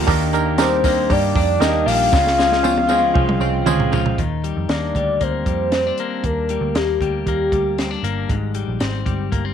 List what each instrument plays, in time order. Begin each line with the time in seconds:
Already playing: clean electric guitar F3 A#3 D4, reed electric piano D4 F4 G4
0.07 picked electric bass D#2, clean electric guitar D#3 A#3 D4 G4, reed electric piano D4 D#4 G4 A#4, kick, hi-hat pedal, open hi-hat, tambourine
0.33 clean electric guitar A#3, reed electric piano D4 D#4 G4 A#4, hi-hat pedal, open hi-hat, tambourine
0.46 clean electric guitar A#3 D4 G4
0.58 clean electric guitar G3, reed electric piano D4 D#4 G4 A#4, soft synth lead C5, snare, hi-hat pedal, open hi-hat, tambourine
0.83 clean electric guitar D#3 A#3 D4 G4, reed electric piano D4 D#4 G4 A#4, kick, hi-hat pedal, open hi-hat, tambourine
1.09 picked electric bass G2, clean electric guitar D#3 G3 A#3 D4 G4, reed electric piano D4 D#4 G4 A#4, soft synth lead D5, kick, hi-hat pedal, open hi-hat, tambourine
1.35 picked electric bass F2, reed electric piano D4 D#4 G4 A#4, clean electric guitar D4, kick, hi-hat pedal, open hi-hat
1.60 picked electric bass D#2, clean electric guitar D#3 A#3 D4 G4, reed electric piano D4 D#4 G4 A#4, soft synth lead D#5, snare, hi-hat pedal, open hi-hat, tambourine
1.86 picked electric bass A#1, clean electric guitar D#3 G3 A#3 D4 G4, reed electric piano D4 D#4 G4 A#4, soft synth lead F5, hi-hat pedal, open hi-hat, tambourine
2.11 picked electric bass C#2, clean electric guitar C#3 F3 G#3 C4, reed electric piano C#4 F4 G#4 C5, kick, snare, tambourine
2.16 clean electric guitar F4
2.27 snare
2.38 clean electric guitar G#3, reed electric piano C#4 F4 G#4 C5, snare, tambourine
2.49 clean electric guitar G#3 C4 F4, snare
2.63 clean electric guitar F3, reed electric piano C#4 F4 G#4 C5, high tom, tambourine
2.78 high tom
2.87 clean electric guitar F3 G#3 C4 F4, reed electric piano C#4 F4 G#4 C5, high tom, tambourine
3.14 picked electric bass C2, clean electric guitar F3 G#3 C4 F4, reed electric piano C#4 F4 G#4 C5, kick
3.29 mid tom
3.40 picked electric bass C2, clean electric guitar C4, reed electric piano C#4 F4 G#4 C5, tambourine
3.65 picked electric bass C#2, clean electric guitar F3 G#3 C4 F4, reed electric piano C#4 F4 G#4 C5, mid tom, tambourine
3.80 floor tom
3.91 picked electric bass C#2, clean electric guitar C#3 F3 G#3 C4 F4, reed electric piano C#4 F4 G#4 C5, floor tom, tambourine
4.06 floor tom
4.18 picked electric bass D#2, clean electric guitar D#3, kick, closed hi-hat
4.44 clean electric guitar G3, closed hi-hat
4.57 picked electric bass F2
4.69 picked electric bass D#2, clean electric guitar A#3, soft synth lead D5, snare, closed hi-hat
4.95 picked electric bass D2, clean electric guitar G3, kick, closed hi-hat
5.21 picked electric bass D2, clean electric guitar A#3, soft synth lead C5, kick, closed hi-hat
5.46 picked electric bass F2, clean electric guitar G3, kick, closed hi-hat
5.72 clean electric guitar C4, snare, closed hi-hat
5.87 clean electric guitar D4
5.98 clean electric guitar A#3, closed hi-hat
6.23 picked electric bass D#2, soft synth lead A#4, kick, closed hi-hat
6.49 clean electric guitar G3, closed hi-hat
6.61 picked electric bass D2
6.75 picked electric bass D#2, clean electric guitar A#3, soft synth lead G4, snare, closed hi-hat
7.00 picked electric bass D2, clean electric guitar G3, kick, closed hi-hat
7.26 picked electric bass D#2, clean electric guitar A#3, soft synth lead G4, kick, closed hi-hat
7.52 picked electric bass D2, clean electric guitar G3, kick, closed hi-hat
7.78 clean electric guitar C4, snare, closed hi-hat
7.91 clean electric guitar D4
8.03 picked electric bass G1, clean electric guitar A#3, closed hi-hat
8.29 picked electric bass G#1, clean electric guitar G#2, kick, closed hi-hat
8.54 clean electric guitar G3, closed hi-hat
8.68 picked electric bass A#1
8.80 picked electric bass G#1, clean electric guitar C4, snare, closed hi-hat
9.06 picked electric bass G1, clean electric guitar G3, kick, closed hi-hat
9.32 picked electric bass G1, clean electric guitar A#3, kick, closed hi-hat
9.45 clean electric guitar C4